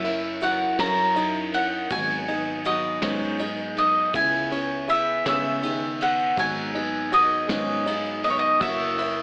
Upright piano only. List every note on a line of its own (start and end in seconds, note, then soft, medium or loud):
0.04 0.41 E4 medium
0.42 0.78 F#4 medium
0.79 1.15 C#4 medium
1.16 1.89 D#4 medium
1.91 2.27 F#4 medium
2.28 2.65 D#4 medium
2.66 3.02 F#4 medium
3.02 3.39 C#4 medium
3.40 4.13 D#4 medium
4.14 4.50 E4 medium
4.51 4.88 C#4 medium
4.88 5.25 E4 medium
5.26 5.62 C#4 medium
5.63 6.36 D#3 medium
6.37 6.74 F#4 medium
6.75 7.11 D#4 medium
7.12 7.48 F#4 medium
7.49 7.86 C#4 medium
7.86 8.59 D#4 medium
8.60 8.97 F#4 medium
8.98 9.22 E4 medium